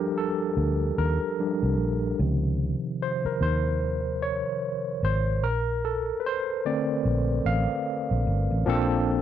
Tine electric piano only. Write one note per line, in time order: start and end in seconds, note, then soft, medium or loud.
0.00 1.38 F3 medium
0.00 1.39 G3 soft
0.00 1.39 D4 medium
0.00 0.17 G4 medium
0.00 0.18 A4 medium
0.00 0.98 A#4 medium
0.18 1.00 A4 medium
0.98 1.35 A#4 medium
1.39 1.74 F3 soft
1.39 1.75 G3 soft
1.39 1.75 D4 medium
2.19 5.40 C3 medium
2.19 5.39 D#3 medium
2.19 5.39 F3 soft
3.02 3.25 C5 medium
3.26 3.33 A#4 medium
3.42 4.24 C5 medium
4.22 5.05 C#5 medium
5.05 5.45 C5 medium
5.44 5.85 A#4 medium
5.85 6.20 A4 medium
6.20 6.24 B4 medium
6.26 6.66 C5 loud
6.65 7.21 D3 medium
6.65 7.22 A3 soft
6.65 7.22 C4 medium
6.65 7.48 D5 medium
7.46 7.83 F5 loud
8.66 9.22 F3 medium
8.66 9.22 A#3 medium
8.66 9.22 C4 medium
8.66 9.22 D4 medium
8.66 9.22 A4 loud